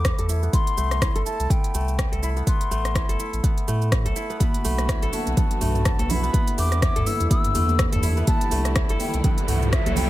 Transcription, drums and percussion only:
0.05 kick, cross-stick, closed hi-hat, shaker
0.19 closed hi-hat, shaker
0.29 shaker
0.43 shaker
0.53 kick, closed hi-hat, shaker
0.67 closed hi-hat, shaker
0.78 shaker
0.91 cross-stick, closed hi-hat, shaker
1.02 kick, cross-stick, closed hi-hat, shaker
1.16 closed hi-hat, shaker
1.26 shaker
1.40 closed hi-hat, shaker
1.50 kick, closed hi-hat, shaker
1.64 closed hi-hat, shaker
1.74 shaker
1.88 shaker
1.99 kick, cross-stick, closed hi-hat, shaker
2.13 closed hi-hat, shaker
2.23 shaker
2.37 shaker
2.47 kick, closed hi-hat, shaker
2.61 closed hi-hat, shaker
2.71 shaker
2.85 cross-stick, closed hi-hat, shaker
2.95 kick, cross-stick, closed hi-hat, shaker
3.09 closed hi-hat, shaker
3.20 shaker
3.33 closed hi-hat, shaker
3.44 kick, closed hi-hat, shaker
3.58 closed hi-hat, shaker
3.68 shaker
3.82 shaker
3.92 kick, cross-stick, closed hi-hat, shaker
4.06 closed hi-hat, shaker
4.16 shaker
4.30 shaker
4.40 kick, closed hi-hat, high conga, shaker
4.54 closed hi-hat, shaker
4.65 open hi-hat, shaker
4.78 cross-stick, closed hi-hat, shaker
4.89 kick, cross-stick, closed hi-hat, shaker
5.02 closed hi-hat, shaker
5.13 open hi-hat, high conga, shaker
5.27 closed hi-hat, shaker
5.37 kick, closed hi-hat, high conga, low conga, shaker
5.51 closed hi-hat, shaker
5.61 mid tom, open hi-hat, shaker
5.75 mid tom, shaker
5.85 kick, cross-stick, closed hi-hat, shaker
5.99 closed hi-hat, high conga, shaker
6.10 open hi-hat, high conga, low conga, shaker
6.24 shaker
6.34 kick, closed hi-hat, high conga, shaker
6.47 closed hi-hat, shaker
6.58 open hi-hat, shaker
6.72 cross-stick, closed hi-hat, shaker
6.82 kick, cross-stick, closed hi-hat, shaker
6.96 closed hi-hat, mid tom, shaker
7.07 open hi-hat, high conga, shaker
7.20 closed hi-hat, shaker
7.31 kick, closed hi-hat, high conga, shaker
7.44 closed hi-hat, mid tom, shaker
7.55 open hi-hat, high conga, shaker
7.69 high conga, shaker
7.79 kick, cross-stick, closed hi-hat, shaker
7.92 closed hi-hat, mid tom, high conga, shaker
8.03 open hi-hat, shaker
8.17 shaker
8.27 kick, closed hi-hat, high conga, shaker
8.41 closed hi-hat, shaker
8.51 open hi-hat, shaker
8.65 cross-stick, closed hi-hat, shaker
8.76 kick, cross-stick, closed hi-hat, shaker
8.89 closed hi-hat, shaker
9.00 open hi-hat, high conga, shaker
9.14 closed hi-hat, shaker
9.24 kick, closed hi-hat, high conga, low conga, shaker
9.38 closed hi-hat, shaker
9.48 mid tom, open hi-hat, shaker
9.62 mid tom, shaker
9.73 kick, cross-stick, closed hi-hat, shaker
9.86 closed hi-hat, high conga, shaker
9.96 open hi-hat, high conga, low conga, shaker

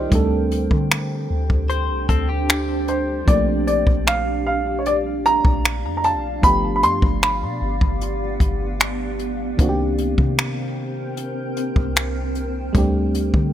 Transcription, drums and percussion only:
0.12 kick, closed hi-hat
0.51 closed hi-hat
0.71 kick
0.91 finger snap, closed hi-hat
1.50 kick
1.70 closed hi-hat
2.09 kick, closed hi-hat
2.49 finger snap, closed hi-hat
2.88 closed hi-hat
3.28 kick, closed hi-hat
3.67 closed hi-hat
3.87 kick
4.07 finger snap, closed hi-hat
4.86 closed hi-hat
5.25 closed hi-hat
5.45 kick
5.65 finger snap, closed hi-hat
6.04 closed hi-hat
6.43 kick, closed hi-hat
6.83 closed hi-hat
7.02 kick
7.22 finger snap, closed hi-hat
7.81 kick
8.01 closed hi-hat
8.40 kick, closed hi-hat
8.80 finger snap, closed hi-hat
9.19 closed hi-hat
9.59 kick, closed hi-hat
9.98 closed hi-hat
10.18 kick
10.38 finger snap, closed hi-hat
11.17 closed hi-hat
11.57 closed hi-hat
11.76 kick
11.96 finger snap, closed hi-hat
12.35 closed hi-hat
12.75 kick, closed hi-hat
13.14 closed hi-hat
13.34 kick

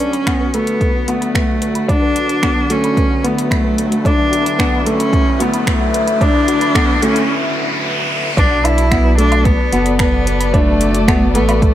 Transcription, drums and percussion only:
0.00 closed hi-hat
0.13 closed hi-hat
0.27 finger snap, kick, closed hi-hat
0.54 closed hi-hat
0.67 closed hi-hat
0.81 kick, closed hi-hat
1.08 closed hi-hat
1.22 closed hi-hat
1.35 finger snap, kick, closed hi-hat
1.62 closed hi-hat
1.75 closed hi-hat
1.89 kick, closed hi-hat
2.16 closed hi-hat
2.29 closed hi-hat
2.43 finger snap, kick, closed hi-hat
2.70 closed hi-hat
2.84 closed hi-hat
2.97 kick, closed hi-hat
3.25 closed hi-hat
3.38 closed hi-hat
3.51 finger snap, kick, closed hi-hat
3.78 closed hi-hat
3.92 closed hi-hat
4.05 kick, closed hi-hat
4.33 closed hi-hat
4.46 closed hi-hat
4.59 finger snap, kick, closed hi-hat
4.86 closed hi-hat
5.00 closed hi-hat
5.13 kick, closed hi-hat
5.40 closed hi-hat
5.54 closed hi-hat
5.67 finger snap, kick, closed hi-hat
5.94 closed hi-hat
6.08 closed hi-hat
6.21 kick, closed hi-hat
6.48 closed hi-hat
6.61 closed hi-hat
6.75 finger snap, kick, closed hi-hat
7.02 closed hi-hat
7.16 closed hi-hat
8.37 kick, closed hi-hat
8.65 closed hi-hat, low woodblock
8.78 closed hi-hat
8.91 finger snap, kick, closed hi-hat
9.19 closed hi-hat
9.32 closed hi-hat, low woodblock
9.45 kick, closed hi-hat
9.73 closed hi-hat
9.86 closed hi-hat
9.99 finger snap, kick, closed hi-hat
10.27 closed hi-hat
10.41 closed hi-hat
10.54 kick, closed hi-hat
10.81 closed hi-hat
10.95 closed hi-hat
11.08 finger snap, kick, closed hi-hat
11.35 closed hi-hat
11.49 closed hi-hat, low woodblock
11.62 kick, closed hi-hat

